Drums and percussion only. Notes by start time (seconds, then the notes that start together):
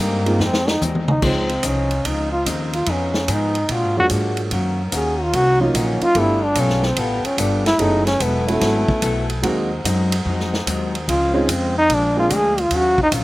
0.26 ride
0.40 snare
0.53 snare
0.68 snare
0.81 hi-hat pedal, high tom
0.95 high tom
1.08 mid tom
1.22 kick, crash
1.49 ride
1.63 kick, hi-hat pedal, ride
1.91 ride
2.05 kick, ride
2.46 kick, hi-hat pedal, ride
2.73 ride
2.86 kick, ride
3.14 snare
3.28 kick, hi-hat pedal, ride
3.55 ride
3.69 kick, ride
4.09 kick, hi-hat pedal, ride
4.37 ride
4.51 kick, ride
4.92 kick, hi-hat pedal, ride
5.33 kick, ride
5.74 kick, hi-hat pedal, ride
6.01 ride
6.15 kick, ride
6.55 kick, hi-hat pedal, ride
6.69 snare
6.83 snare
6.96 kick, ride
7.25 ride
7.38 kick, hi-hat pedal, ride
7.66 snare, ride
7.79 kick, ride
8.07 snare, ride
8.20 kick, hi-hat pedal, ride
8.48 ride
8.61 kick, snare, ride
8.88 kick
9.02 kick, hi-hat pedal, ride
9.30 ride
9.43 kick, ride
9.84 kick, hi-hat pedal, ride
10.12 ride
10.25 kick
10.40 snare
10.54 snare
10.67 kick, hi-hat pedal, ride
10.95 ride
11.08 kick, ride
11.49 kick, hi-hat pedal, ride
11.89 kick, ride
12.30 kick, hi-hat pedal, ride
12.58 ride
12.71 kick, ride
12.98 kick
13.12 kick, hi-hat pedal, ride